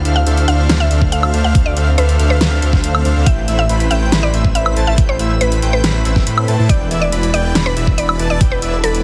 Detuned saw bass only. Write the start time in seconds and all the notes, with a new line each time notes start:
0.05 D2
0.26 D2
0.48 D2
0.69 D2
0.91 D2
1.12 D2
1.34 D2
1.45 D2
1.55 D2
1.76 D2
1.98 D2
2.19 D2
2.41 D2
2.62 D2
2.84 D2
3.05 D2
3.16 D2
3.26 A1
3.48 A1
3.69 A1
3.91 A1
4.12 A1
4.34 A1
4.55 A1
4.77 A1
4.87 A1
4.98 A1
5.19 A1
5.41 A1
5.62 A1
5.84 A1
6.05 A1
6.27 A2
6.48 A2
6.59 A2
6.69 E1
6.91 E1
7.12 E1
7.34 E1
7.55 E1
7.77 E1
7.98 E1
8.19 E1
8.30 E1
8.41 E1
8.62 E1
8.84 E1